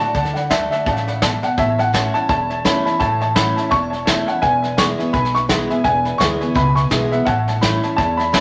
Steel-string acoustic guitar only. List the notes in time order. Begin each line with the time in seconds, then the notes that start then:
Already playing: A2
0.00 D4 F#4
0.15 D3
0.50 D3 A3 D4 F#4
0.86 C#3
1.23 B2
1.57 A2
1.93 E3 A3 C#4 E4
2.15 C#4 E4
2.29 E2
2.65 E3 A3 C#4 E4
2.85 C#4 E4
3.00 A2
3.36 E3 A3 C#4 E4
3.56 C#4 E4
3.72 E2
4.08 E3 A3 C#4 E4
4.28 C#4 E4
4.43 E2
4.78 E3 G#3 B3 E4
4.99 B3 E4
5.14 B2
5.49 E3 G#3 B3 E4
5.70 B3 E4
5.85 E2
6.19 E3 G#3 B3 E4
6.40 B3 E4
6.55 B2
6.90 E3 G#3 B3 E4
7.11 B3 E4
7.26 A2
7.62 E3 A3 C#4 E4
7.82 C#4 E4
7.99 E2
8.32 E3 A3 C#4 E4